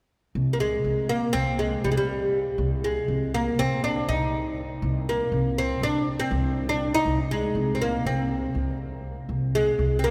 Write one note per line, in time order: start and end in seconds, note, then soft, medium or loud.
0.35 0.75 C2 medium
0.53 0.60 A#3 soft
0.60 1.09 G#3 medium
0.84 1.24 C2 medium
1.09 1.33 A#3 medium
1.33 1.74 C2 medium
1.33 1.59 C4 medium
1.59 1.84 G#3 medium
1.84 2.44 C2 medium
1.84 1.91 G3 medium
1.92 1.97 G#3 soft
1.97 2.37 G3 medium
2.58 2.98 C2 medium
2.84 3.34 G#3 medium
3.08 3.48 C2 medium
3.34 3.60 A#3 medium
3.58 3.97 C2 medium
3.58 3.83 C4 medium
3.84 4.08 D4 medium
4.08 4.68 C2 medium
4.08 4.60 D#4 medium
4.82 5.22 C2 medium
5.09 5.59 A#3 medium
5.32 5.72 C2 medium
5.58 5.83 C4 medium
5.81 6.21 C2 medium
5.81 6.06 D4 medium
6.20 6.71 C4 medium
6.31 6.91 C2 medium
6.69 6.94 D4 medium
6.94 7.17 D#4 medium
7.05 7.45 C2 medium
7.31 7.76 G#3 medium
7.55 7.95 C2 medium
7.75 7.81 C4 soft
7.82 8.06 A#3 medium
8.05 8.45 C2 medium
8.05 8.77 C4 medium
8.55 9.14 C2 medium
9.29 9.69 C2 medium
9.55 9.96 G#3 medium
9.79 10.11 C2 medium
9.99 10.05 C4 soft
10.04 10.11 A#3 medium